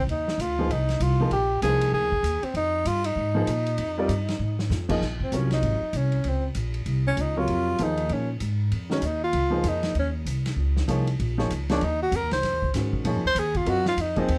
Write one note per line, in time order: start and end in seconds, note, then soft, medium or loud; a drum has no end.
0.07 0.37 D#2 medium
0.07 0.42 D#4 medium
0.07 ride medium
0.28 snare medium
0.38 0.69 D2 medium
0.38 0.73 F4 medium
0.38 hi-hat pedal medium
0.38 ride medium
0.59 0.70 F3 medium
0.59 0.70 A#3 medium
0.59 0.70 D#4 medium
0.59 0.70 G#4 medium
0.59 0.71 C5 medium
0.69 0.99 C2 medium
0.69 1.04 D#4 medium
0.69 ride medium
0.89 snare soft
0.89 ride soft
1.00 1.30 C2 medium
1.00 1.32 F4 medium
1.00 hi-hat pedal soft
1.00 ride medium
1.20 1.31 F3 medium
1.20 1.31 A#3 medium
1.20 1.32 D#4 medium
1.20 1.32 G#4 medium
1.20 1.32 A#4 medium
1.31 1.61 A#1 medium
1.31 1.61 G4 medium
1.31 ride medium
1.62 1.91 C2 medium
1.62 2.09 F3 medium
1.62 2.09 A#3 medium
1.62 2.09 D#4 soft
1.62 1.91 G#4 loud
1.62 2.10 G#4 medium
1.62 2.10 C5 medium
1.62 hi-hat pedal medium
1.62 ride medium
1.81 ride medium
1.92 2.22 D2 medium
1.92 2.46 G#4 loud
2.12 kick medium
2.23 2.41 D#2 medium
2.23 hi-hat pedal medium
2.23 ride medium
2.43 2.56 C4 medium
2.43 muted upright bass stroke soft
2.43 ride soft
2.54 2.85 F2 medium
2.54 2.88 D#4 medium
2.54 ride medium
2.85 3.15 G2 medium
2.85 3.07 F4 loud
2.85 hi-hat pedal medium
2.85 ride medium
3.04 4.71 D#4 medium
3.04 ride medium
3.15 3.46 G#2 medium
3.35 3.46 F3 medium
3.35 3.46 A#3 medium
3.35 3.47 D#4 medium
3.35 3.47 G#4 medium
3.35 3.47 C5 medium
3.47 3.77 A#2 loud
3.47 hi-hat pedal medium
3.47 ride medium
3.66 ride medium
3.78 4.08 F2 medium
3.78 ride medium
3.98 4.08 G3 medium
3.98 4.08 C4 medium
3.98 4.09 F4 medium
3.98 4.09 A#4 medium
3.98 4.09 D5 medium
4.09 4.39 G2 medium
4.09 hi-hat pedal medium
4.09 ride medium
4.29 snare medium
4.29 ride medium
4.39 4.69 G#2 medium
4.59 snare medium
4.70 5.00 F2 loud
4.70 snare medium
4.70 hi-hat pedal medium
4.89 5.00 F3 medium
4.89 5.00 A#3 medium
4.89 5.00 D#4 medium
4.89 5.01 G#4 medium
4.89 5.01 D#5 medium
4.89 kick medium
4.89 crash medium
5.01 5.31 A#1 medium
5.01 snare soft
5.20 5.38 C4 medium
5.20 kick medium
5.32 5.62 C2 medium
5.32 5.78 C3 soft
5.32 5.78 F#3 medium
5.32 5.78 F4 soft
5.32 5.79 A#4 soft
5.32 5.79 C#5 medium
5.32 hi-hat pedal medium
5.32 ride medium
5.36 5.52 C#4 medium
5.51 5.99 D#4 medium
5.51 snare soft
5.51 ride soft
5.62 5.80 G#1 medium
5.62 ride medium
5.81 muted upright bass stroke soft
5.93 6.23 C2 medium
5.93 hi-hat pedal medium
5.93 ride medium
5.97 6.30 C#4 medium
6.12 ride soft
6.24 6.55 C#2 medium
6.24 ride medium
6.29 6.46 C4 medium
6.55 6.85 A#1 medium
6.55 hi-hat pedal soft
6.55 ride medium
6.74 ride soft
6.86 7.16 C2 medium
6.86 ride medium
7.08 7.23 C#4 loud
7.17 7.47 C#2 medium
7.17 hi-hat pedal medium
7.17 ride medium
7.21 7.40 D#4 medium
7.36 7.77 C3 medium
7.36 7.77 F#3 medium
7.36 7.77 F4 medium
7.36 7.84 F4 loud
7.36 7.77 A#4 medium
7.36 7.77 C#5 medium
7.48 7.78 F2 medium
7.48 ride medium
7.78 8.09 D#2 medium
7.78 8.25 F3 medium
7.78 8.26 A#3 medium
7.78 8.26 D#4 medium
7.78 8.26 G#4 medium
7.78 8.26 C5 medium
7.78 hi-hat pedal medium
7.78 ride medium
7.83 8.15 D#4 medium
7.97 ride soft
8.09 8.40 A#2 medium
8.09 ride medium
8.13 8.31 C#4 medium
8.40 8.71 G#2 medium
8.40 hi-hat pedal medium
8.40 ride medium
8.71 9.01 F2 medium
8.71 ride medium
8.90 9.01 D#3 medium
8.90 9.01 G#3 medium
8.90 9.01 C#4 medium
8.90 9.07 C#4 medium
8.90 9.02 F#4 medium
8.90 9.02 A#4 medium
8.90 snare medium
9.02 9.32 D#2 medium
9.02 hi-hat pedal medium
9.02 ride medium
9.06 9.23 D#4 medium
9.24 9.70 F4 medium
9.33 9.63 C#2 medium
9.33 ride medium
9.50 9.92 F3 medium
9.50 9.93 A#3 medium
9.50 9.93 D#4 medium
9.50 9.93 G#4 medium
9.50 9.93 C5 medium
9.64 9.94 F2 medium
9.64 hi-hat pedal medium
9.64 ride medium
9.68 9.97 D#4 medium
9.83 snare medium
9.83 ride soft
9.95 10.25 D#2 medium
9.95 ride medium
9.99 10.09 C#4 medium
10.25 10.56 C2 medium
10.25 hi-hat pedal medium
10.25 ride medium
10.46 snare soft
10.46 ride medium
10.56 10.87 C#2 medium
10.77 snare soft
10.88 11.18 C2 medium
10.88 11.05 F3 medium
10.88 11.05 A#3 medium
10.88 11.06 D#4 medium
10.88 11.06 G#4 medium
10.88 11.06 C#5 medium
10.88 hi-hat pedal medium
10.88 ride medium
11.07 ride soft
11.20 11.50 A#1 medium
11.20 ride medium
11.38 11.49 F3 medium
11.38 11.49 A#3 medium
11.38 11.49 D#4 medium
11.38 11.49 G#4 medium
11.38 11.50 C#5 medium
11.38 snare soft
11.50 11.80 C#2 medium
11.50 hi-hat pedal medium
11.50 ride medium
11.69 11.80 F3 medium
11.69 11.81 A#3 medium
11.69 11.86 D4 medium
11.69 11.81 D#4 medium
11.69 11.81 G#4 medium
11.69 11.81 C#5 medium
11.69 snare medium
11.69 ride soft
11.81 12.11 D#2 medium
11.81 12.02 D#4 medium
11.81 ride medium
12.02 12.18 F#4 loud
12.12 12.22 F2 loud
12.12 hi-hat pedal medium
12.12 ride medium
12.16 12.32 A#4 medium
12.22 12.31 D#2 medium
12.31 12.42 C#2 medium
12.31 12.72 C5 medium
12.31 snare medium
12.31 ride soft
12.42 12.53 F#2 medium
12.42 snare soft
12.42 ride medium
12.53 12.63 D#2 medium
12.62 12.73 C#2 medium
12.62 kick medium
12.74 13.04 G#2 medium
12.74 13.04 D#3 soft
12.74 13.04 G#3 soft
12.74 13.05 C#4 medium
12.74 13.05 F#4 soft
12.74 13.05 C5 medium
12.74 snare soft
12.74 hi-hat pedal medium
12.74 ride medium
12.93 kick medium
13.04 13.15 A#2 medium
13.04 13.22 F3 medium
13.04 13.22 A#3 medium
13.04 13.22 D#4 medium
13.04 13.23 G#4 medium
13.04 13.23 C#5 medium
13.04 ride medium
13.15 13.24 F#2 medium
13.25 13.34 D#2 medium
13.25 13.41 C5 loud
13.35 13.66 D#2 loud
13.35 hi-hat pedal medium
13.35 ride medium
13.39 13.58 G#4 medium
13.55 13.71 F4 medium
13.55 kick medium
13.55 ride soft
13.65 13.96 F#2 medium
13.65 13.83 F#3 medium
13.65 13.84 C4 medium
13.65 13.84 F4 medium
13.65 13.84 A#4 medium
13.65 13.84 D#5 medium
13.65 ride medium
13.70 13.87 F#4 loud
13.86 14.02 F4 medium
13.86 snare medium
13.97 14.28 F2 medium
13.97 hi-hat pedal medium
13.97 ride medium
14.01 14.21 D#4 medium
14.16 14.28 F3 medium
14.16 14.28 A#3 medium
14.16 14.38 C4 medium
14.16 14.28 D#4 medium
14.16 14.28 G#4 medium
14.16 14.28 D#5 medium
14.16 kick soft
14.16 ride soft
14.28 14.38 D#2 medium
14.28 ride medium